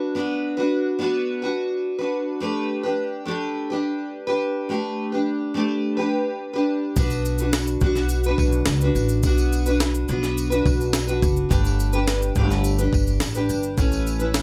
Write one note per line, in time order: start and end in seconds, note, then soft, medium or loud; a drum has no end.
0.00 0.15 D4 soft
0.00 0.16 F#4 medium
0.00 0.15 B4 medium
0.15 0.58 B3 medium
0.15 0.58 D4 medium
0.15 0.57 F#4 medium
0.15 0.56 B4 medium
0.57 0.98 D4 medium
0.57 1.00 F#4 medium
0.57 1.00 B4 medium
0.99 1.42 B3 medium
0.99 1.43 D4 medium
0.99 1.42 F#4 medium
0.99 1.41 B4 medium
1.42 2.01 D4 soft
1.42 1.99 F#4 medium
1.42 1.98 B4 medium
1.99 2.40 D4 soft
1.99 2.41 F#4 medium
1.99 2.41 B4 medium
2.40 2.84 A3 medium
2.40 2.84 D4 medium
2.40 2.83 G4 medium
2.40 2.82 B4 medium
2.83 3.25 D4 soft
2.83 3.27 G4 medium
2.83 3.27 B4 medium
3.25 3.69 A3 medium
3.25 3.70 D4 medium
3.25 3.70 G4 medium
3.25 3.69 B4 medium
3.70 4.30 D4 medium
3.70 4.27 G4 medium
3.70 4.27 B4 medium
4.27 4.69 D4 soft
4.27 4.70 G4 medium
4.27 4.69 B4 medium
4.69 5.12 A3 medium
4.69 5.12 D4 medium
4.69 5.12 G4 medium
4.69 5.11 B4 medium
5.12 5.54 D4 medium
5.12 5.55 G4 medium
5.12 5.55 B4 medium
5.54 5.97 A3 medium
5.54 5.97 D4 medium
5.54 5.97 G4 medium
5.54 5.96 B4 medium
5.97 6.56 D4 soft
5.97 6.54 G4 medium
5.97 6.53 B4 medium
6.53 6.96 D4 soft
6.53 6.97 G4 medium
6.53 6.96 B4 medium
6.96 7.78 B1 loud
6.96 7.39 B3 medium
6.96 7.40 D4 medium
6.96 7.40 F#4 medium
6.96 7.39 B4 medium
6.96 kick loud
6.96 tambourine soft
6.96 shaker medium
7.10 tambourine medium
7.10 shaker medium
7.25 tambourine soft
7.25 shaker medium
7.38 7.83 F#4 soft
7.38 7.82 B4 medium
7.38 shaker medium
7.42 7.82 D4 soft
7.53 snare loud
7.53 tambourine medium
7.53 shaker medium
7.67 shaker medium
7.81 8.34 B1 medium
7.81 8.24 B3 medium
7.81 8.25 D4 medium
7.81 8.25 F#4 medium
7.81 8.25 B4 medium
7.81 kick medium
7.81 shaker soft
7.96 snare soft
7.96 tambourine soft
7.96 shaker soft
8.09 tambourine soft
8.09 shaker medium
8.24 8.82 F#4 medium
8.24 8.82 B4 medium
8.24 shaker medium
8.28 8.85 D4 medium
8.38 8.65 B1 loud
8.38 kick loud
8.38 tambourine medium
8.53 shaker soft
8.66 8.93 C#2 loud
8.66 snare loud
8.66 tambourine medium
8.66 shaker medium
8.81 9.24 D4 soft
8.81 9.25 F#4 soft
8.81 9.24 B4 medium
8.81 shaker medium
8.95 9.24 A1 medium
8.95 tambourine medium
8.95 shaker soft
9.09 tambourine soft
9.09 shaker soft
9.23 10.05 B1 loud
9.23 9.66 B3 medium
9.23 9.67 D4 medium
9.23 9.66 F#4 medium
9.23 kick loud
9.23 tambourine medium
9.23 shaker medium
9.27 9.65 B4 medium
9.38 tambourine medium
9.38 shaker medium
9.53 tambourine soft
9.53 shaker medium
9.66 10.08 D4 soft
9.66 10.09 F#4 medium
9.66 10.09 B4 medium
9.66 tambourine soft
9.66 shaker medium
9.80 snare loud
9.80 tambourine medium
9.80 shaker medium
9.95 shaker medium
10.08 10.62 B1 medium
10.08 10.51 B3 medium
10.08 10.52 D4 medium
10.08 10.51 F#4 medium
10.08 10.49 B4 medium
10.08 shaker soft
10.23 snare soft
10.23 shaker soft
10.38 tambourine soft
10.38 shaker medium
10.50 11.10 D4 soft
10.50 11.08 F#4 medium
10.50 11.07 B4 medium
10.50 shaker medium
10.66 11.18 B1 loud
10.66 kick loud
10.66 tambourine soft
10.81 tambourine soft
10.81 shaker soft
10.93 snare loud
10.93 tambourine medium
10.93 shaker medium
11.07 11.49 D4 soft
11.07 11.51 F#4 medium
11.07 11.50 B4 medium
11.07 shaker medium
11.22 11.48 F#1 medium
11.22 kick medium
11.22 tambourine soft
11.22 shaker soft
11.37 shaker soft
11.49 12.32 G1 loud
11.49 11.92 A3 medium
11.49 11.93 D4 medium
11.49 11.93 G4 medium
11.49 11.92 B4 medium
11.49 kick loud
11.49 tambourine medium
11.49 shaker medium
11.65 tambourine medium
11.65 shaker medium
11.80 tambourine soft
11.80 shaker medium
11.93 12.36 D4 soft
11.93 12.36 G4 medium
11.93 12.36 B4 medium
11.93 shaker medium
12.08 snare loud
12.08 tambourine medium
12.08 shaker medium
12.22 shaker medium
12.36 12.89 G1 loud
12.36 12.79 A3 medium
12.36 12.79 D4 medium
12.36 12.79 G4 medium
12.36 12.77 B4 medium
12.36 kick medium
12.36 shaker soft
12.51 snare soft
12.51 tambourine soft
12.51 shaker soft
12.64 tambourine soft
12.64 shaker medium
12.78 13.37 D4 soft
12.78 13.35 G4 medium
12.78 13.35 B4 medium
12.78 shaker medium
12.93 13.19 G1 loud
12.93 kick loud
12.93 tambourine medium
13.07 tambourine soft
13.07 shaker soft
13.20 13.47 A1 medium
13.20 snare loud
13.20 tambourine medium
13.20 shaker medium
13.35 13.77 D4 soft
13.35 13.78 G4 medium
13.35 13.78 B4 medium
13.35 shaker medium
13.50 13.76 G1 medium
13.50 tambourine soft
13.50 shaker soft
13.63 shaker soft
13.77 14.42 A1 loud
13.77 14.20 A3 medium
13.77 14.20 C#4 medium
13.77 14.20 E4 medium
13.77 14.18 B4 medium
13.77 kick loud
13.77 tambourine medium
13.77 shaker medium
13.92 tambourine medium
13.92 shaker medium
14.07 tambourine soft
14.07 shaker medium
14.19 14.42 C#4 medium
14.19 14.42 E4 soft
14.19 14.42 B4 medium
14.19 shaker medium
14.34 snare loud
14.34 tambourine medium
14.34 shaker medium